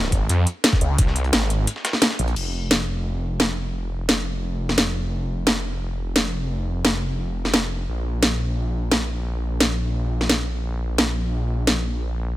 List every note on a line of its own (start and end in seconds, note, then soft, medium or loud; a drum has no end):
0.00 0.11 A#1 medium
0.00 snare soft
0.12 0.28 G#1 loud
0.12 kick medium
0.12 closed hi-hat medium
0.29 0.45 F2 medium
0.29 closed hi-hat medium
0.47 closed hi-hat medium
0.64 snare loud
0.64 closed hi-hat medium
0.73 kick loud
0.73 snare soft
0.81 0.97 C#2 loud
0.81 closed hi-hat medium
0.98 1.32 C2 medium
0.98 kick loud
0.98 closed hi-hat loud
0.98 closed hi-hat medium
1.07 snare soft
1.16 closed hi-hat medium
1.24 closed hi-hat soft
1.33 1.66 G#1 loud
1.33 snare loud
1.33 closed hi-hat medium
1.50 closed hi-hat medium
1.67 closed hi-hat medium
1.76 snare soft
1.85 snare loud
1.85 closed hi-hat medium
1.93 snare soft
2.02 snare loud
2.02 closed hi-hat medium
2.11 snare medium
2.19 2.35 A#1 loud
2.19 closed hi-hat medium
2.28 closed hi-hat medium
2.36 7.86 F1 medium
2.36 crash medium
2.71 snare loud
3.40 snare loud
4.09 snare loud
4.69 snare soft
4.78 snare loud
5.47 snare loud
6.16 snare loud
6.85 snare loud
7.45 snare soft
7.54 snare loud
7.88 12.37 A#1 medium
8.23 snare loud
8.91 snare loud
9.60 snare loud
10.21 snare soft
10.29 snare loud
10.98 snare loud
11.67 snare loud